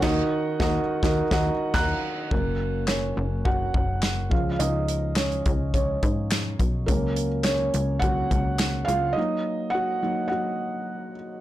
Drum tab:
CC |x-----------x---|----------------|----------------|----------------|
HH |----------------|----------------|x-x-xxx-x-x-x-x-|x-x-x-x-x-x-x-x-|
CP |----------------|----x-------x---|----x-------x---|----x-------x---|
SD |o---o--o-o--o---|----o-------o---|----o-------o---|----o-------o---|
BD |o---o--o-o--o---|o-------o-o---o-|------o-o-o---o-|o-------o-o-----|

CC |----------------|
HH |----------------|
CP |----------------|
SD |----------------|
BD |----------------|